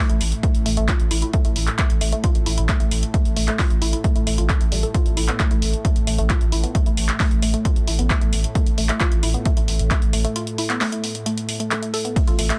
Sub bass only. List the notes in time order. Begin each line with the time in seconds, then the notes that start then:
0.10 A1
0.21 A1
0.55 A1
0.66 A1
0.77 A1
1.00 A1
1.11 A1
1.45 A1
1.56 A1
1.90 A1
2.01 A1
2.35 A1
2.46 A1
2.58 A1
2.80 A1
2.92 A1
3.25 A1
3.37 A1
3.70 A1
3.82 A1
4.16 A1
4.27 A1
4.38 A1
4.61 A1
4.72 A1
5.06 A1
5.17 A1
5.51 A1
5.62 A1
5.96 A1
6.07 A1
6.19 A1
6.41 A1
6.52 A1
6.86 A1
6.97 A1
7.31 A1
7.42 A1
7.76 A1
7.88 A1
7.99 A1
8.21 A1
8.33 A1
8.67 A1
8.78 A1
9.12 A1
9.23 A1
9.57 A1
9.68 A1
9.79 A1
10.02 A1
10.13 A1
12.27 A1
12.39 A1